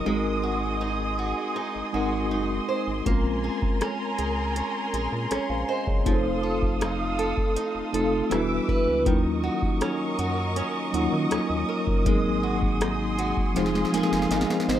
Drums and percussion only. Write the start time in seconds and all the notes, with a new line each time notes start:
3.06 kick, closed hi-hat
3.62 kick
3.81 cross-stick, closed hi-hat
4.19 closed hi-hat
4.56 closed hi-hat
4.94 closed hi-hat
5.31 cross-stick, closed hi-hat
5.87 kick
6.06 kick, closed hi-hat
6.62 kick
6.81 cross-stick, closed hi-hat
7.19 closed hi-hat
7.37 kick
7.56 closed hi-hat
7.94 closed hi-hat
8.31 cross-stick, closed hi-hat
8.69 kick
9.06 kick, closed hi-hat
9.62 kick
9.81 cross-stick, closed hi-hat
10.19 closed hi-hat
10.56 closed hi-hat
10.94 closed hi-hat
11.31 cross-stick, closed hi-hat
11.87 kick
12.06 kick, closed hi-hat
12.62 kick
12.81 cross-stick, closed hi-hat
13.19 closed hi-hat
13.37 kick
13.56 snare, closed hi-hat
13.66 snare
13.75 snare
13.85 snare
13.94 snare, closed hi-hat
14.03 snare
14.13 snare
14.22 snare
14.31 snare, closed hi-hat
14.41 snare
14.50 snare
14.60 snare
14.69 snare